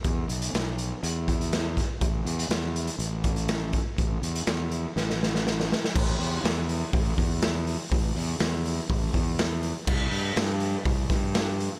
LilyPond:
<<
  \new Staff \with { instrumentName = "Fingered electric bass" } { \clef bass \time 4/4 \key a \major \tempo 4 = 122 e,8 b,,8 b,,4 e,2 | a,,8 e,8 e,4 a,,2 | a,,8 e,8 e,4 a,,2 | a,,8 e,8 e,4 a,,8 e,4. |
a,,8 e,8 e,4 a,,8 e,4. | c,8 g,8 g,4 c,8 g,4. | }
  \new DrumStaff \with { instrumentName = "Drums" } \drummode { \time 4/4 <hh bd>8 hh16 hh16 <hh sn>8 hh8 hh8 <hh bd>16 hh16 <hh sn>8 <hh bd sn>8 | <hh bd>8 hh16 hh16 <hh sn>8 hh16 hh16 hh8 <hh bd>16 hh16 <hh sn>8 <hh bd>8 | <hh bd>8 hh16 hh16 <hh sn>8 hh8 sn16 sn16 sn16 sn16 sn16 sn16 sn16 sn16 | <cymc bd>8 hho8 <hho sn>8 hho8 <hho bd>8 <hho bd>8 <hho sn>8 hho8 |
<hho bd>8 hho8 <hho sn>8 hho8 <hho bd>8 <hho bd>8 <hho sn>8 hho8 | <cymc bd>8 hho8 <hho sn>8 hho8 <hho bd>8 <hho bd sn>8 <hho sn>8 hho8 | }
>>